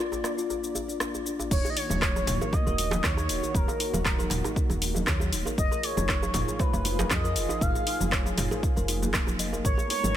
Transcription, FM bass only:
1.51 1.62 D#1 loud
1.90 2.24 D#1 medium
2.27 2.38 D#1 medium
2.67 3.00 D#1 loud
3.04 3.31 D#2 loud
3.29 3.40 D#1 medium
3.54 3.65 D#1 loud
3.93 4.27 D#1 medium
4.31 4.42 D#1 medium
4.70 5.03 D#1 loud
5.07 5.34 D#2 loud
5.32 5.43 D#1 medium
5.58 5.69 F1 loud
5.97 6.30 F1 medium
6.34 6.45 F1 medium
6.73 7.06 F1 loud
7.11 7.37 F2 medium
7.36 7.47 F1 medium
7.61 7.72 F1 loud
8.00 8.34 F1 medium
8.38 8.48 F1 medium
8.77 9.15 F1 loud
9.14 9.41 D#1 medium
9.39 9.60 F1 loud
9.65 9.76 G#1 loud
10.04 10.17 G#1 medium

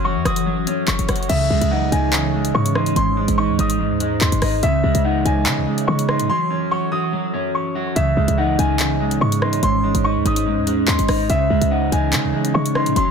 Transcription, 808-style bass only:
0.00 0.17 F#1 loud
0.16 0.25 F#2 loud
0.25 0.65 F#1 loud
0.88 0.98 F#1 loud
0.99 1.08 F#1 loud
1.09 1.29 F#1 loud
1.29 1.50 C#2 loud
1.50 1.61 C#2 loud
1.61 1.91 C#2 loud
1.92 2.52 C#2 loud
2.55 2.95 G#2 loud
2.96 3.27 G#1 loud
3.28 3.50 G#1 loud
3.49 3.58 D#2 loud
3.59 3.92 G#1 loud
3.91 4.20 D#2 loud
4.21 4.32 D#2 loud
4.32 4.41 G#1 loud
4.42 4.62 G#1 loud
4.63 4.83 C#2 loud
4.84 4.94 C#2 loud
4.95 5.24 C#2 loud
5.25 5.48 C#2 loud
5.46 5.59 C#3 loud
5.57 5.67 C#2 loud
5.88 6.21 C#3 loud
6.20 6.29 G#2 loud
7.96 8.16 C#2 loud
8.17 8.28 C#2 loud
8.28 8.57 C#2 loud
8.59 9.19 C#2 loud
9.21 9.61 G#2 loud
9.63 9.93 G#1 loud
9.95 10.17 G#1 loud
10.16 10.25 D#2 loud
10.25 10.59 G#1 loud
10.57 10.86 D#2 loud
10.88 10.98 D#2 loud
10.99 11.08 G#1 loud
11.09 11.29 G#1 loud
11.30 11.50 C#2 loud
11.50 11.61 C#2 loud
11.61 11.91 C#2 loud
11.92 12.14 C#2 loud
12.13 12.25 C#3 loud
12.24 12.33 C#2 loud
12.55 12.88 C#3 loud
12.86 12.96 G#2 loud
12.96 13.11 F#1 loud

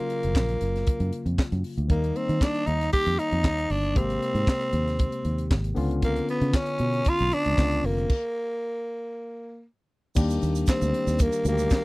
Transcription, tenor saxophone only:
0.00 1.39 A#3 medium
1.91 2.18 A#3 medium
2.16 2.44 C4 medium
2.43 2.68 D4 loud
2.66 2.92 D#4 medium
2.93 3.20 G4 loud
3.19 3.73 D#4 loud
3.71 3.98 D4 medium
3.97 5.52 C4 medium
6.04 6.27 A#3 medium
6.30 6.58 B3 medium
6.56 7.10 C#4 medium
7.09 7.35 F4 loud
7.34 7.87 D4 loud
7.86 9.65 A#3 medium
10.69 11.23 C4 medium
11.22 11.46 A#3 loud
11.48 11.84 A#3 loud

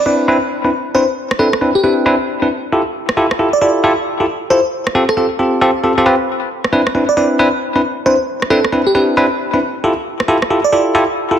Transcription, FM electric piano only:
0.06 0.15 D5 medium
0.95 1.10 C5 medium
1.39 1.55 A4 medium
1.75 1.81 G4 medium
1.83 1.93 G4 medium
3.53 3.58 D5 medium
3.61 3.71 D5 medium
4.50 4.66 C5 medium
5.09 5.14 A4 medium
5.17 5.26 A4 medium
7.09 7.14 D5 medium
7.17 7.26 D5 medium
8.06 8.22 C5 medium
8.50 8.66 A4 medium
8.87 8.92 G4 medium
8.95 9.04 G4 medium
10.64 10.70 D5 medium
10.72 10.82 D5 medium

